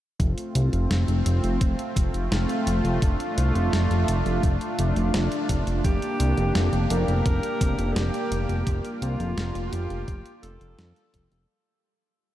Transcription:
0.19 analog synth bass F1, supersaw synth A3 C4 F4, kick, closed hi-hat
0.38 closed hi-hat
0.55 analog synth bass C2, closed hi-hat
0.73 analog synth bass F1, closed hi-hat
0.90 analog synth bass F1, snare, closed hi-hat
1.08 analog synth bass F1, closed hi-hat
1.26 analog synth bass F1, closed hi-hat
1.43 analog synth bass F1, closed hi-hat
1.61 analog synth bass F1, kick, closed hi-hat
1.79 closed hi-hat
1.96 analog synth bass F1, kick, closed hi-hat
2.14 analog synth bass F1, closed hi-hat
2.31 analog synth bass F1, snare, closed hi-hat
2.49 closed hi-hat
2.67 analog synth bass F1, closed hi-hat
2.84 analog synth bass F1, closed hi-hat
3.02 analog synth bass F1, supersaw synth D4, kick, closed hi-hat
3.20 closed hi-hat
3.37 analog synth bass C2, closed hi-hat
3.55 analog synth bass F1, closed hi-hat
3.73 analog synth bass F1, snare, closed hi-hat
3.90 analog synth bass F1, closed hi-hat
4.08 analog synth bass F1, closed hi-hat
4.26 analog synth bass F1, closed hi-hat
4.43 analog synth bass F1, kick, closed hi-hat
4.61 closed hi-hat
4.79 analog synth bass F1, closed hi-hat
4.96 analog synth bass F1, closed hi-hat
5.14 analog synth bass F1, snare, closed hi-hat
5.32 closed hi-hat
5.49 analog synth bass F1, kick, closed hi-hat
5.67 analog synth bass F1, closed hi-hat
5.84 analog synth bass F1, supersaw synth A#3 G4, alto saxophone G4, kick, closed hi-hat
6.02 closed hi-hat
6.20 analog synth bass C2, closed hi-hat
6.37 analog synth bass F1, closed hi-hat
6.55 analog synth bass F1, snare, closed hi-hat
6.72 analog synth bass F1, closed hi-hat
6.90 analog synth bass F1, alto saxophone A#4, closed hi-hat
7.08 analog synth bass F1, closed hi-hat
7.26 analog synth bass F1, kick, closed hi-hat
7.43 closed hi-hat
7.61 analog synth bass F1, kick, closed hi-hat
7.78 analog synth bass F1, closed hi-hat
7.96 analog synth bass F1, alto saxophone G4, snare, closed hi-hat
8.14 closed hi-hat
8.31 analog synth bass F1, closed hi-hat
8.49 analog synth bass F1, closed hi-hat
8.66 analog synth bass F1, supersaw synth F4, kick, closed hi-hat
8.85 closed hi-hat
9.02 analog synth bass C2, alto saxophone F4, closed hi-hat
9.20 analog synth bass F1, closed hi-hat
9.37 analog synth bass F1, snare, closed hi-hat
9.55 analog synth bass F1, closed hi-hat
9.72 analog synth bass F1, alto saxophone G4, closed hi-hat
9.90 analog synth bass F1, closed hi-hat
10.08 analog synth bass F1, kick, closed hi-hat
10.26 closed hi-hat
10.43 analog synth bass F1, alto saxophone A4, closed hi-hat
10.61 analog synth bass F1, closed hi-hat
10.78 analog synth bass F2, snare, closed hi-hat
10.96 closed hi-hat
11.14 analog synth bass F1, kick, closed hi-hat
11.31 analog synth bass F1, closed hi-hat

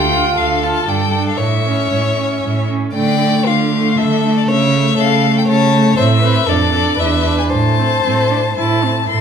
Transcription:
Already playing: cello D2, violin F4 G5
0.12 viola F4
0.37 cello D2, violin A4 F5
0.63 viola F4, violin A5
0.87 cello G2, viola D4, violin G5
1.14 viola D4
1.28 violin F5
1.37 cello A2, violin C#5 E5
1.65 viola C#4
1.91 cello A2
2.17 viola C#4
2.43 cello A2
2.69 viola C#4
2.95 cello D3, viola A3, violin D5 G5
3.21 viola A3
3.47 cello D3, violin F4 F5
3.72 viola A3
3.97 cello D3, violin A4 E5
4.24 viola A3
4.37 violin D5
4.48 cello C#3, violin C#5 E5
4.74 viola A3
4.98 cello C#3, violin A4 F5
5.23 viola A3
5.38 violin G5
5.48 cello C#3, violin C#5 A5
5.74 viola A3
5.97 cello A2, viola C4, violin C5 E5
6.21 viola C4, violin B4
6.47 cello F2, viola D4, violin A4 D5
6.72 viola D4, violin A4
6.98 cello E2, viola D4, violin B4 E5
7.25 viola D4
7.38 violin G#5
7.50 cello A2, violin C5 A5
7.78 viola C4
8.05 cello A2, viola C4
8.31 viola D4
8.57 cello A2, viola E4, violin A5
8.84 viola C4
9.09 cello A2, viola E4, violin A4 C6

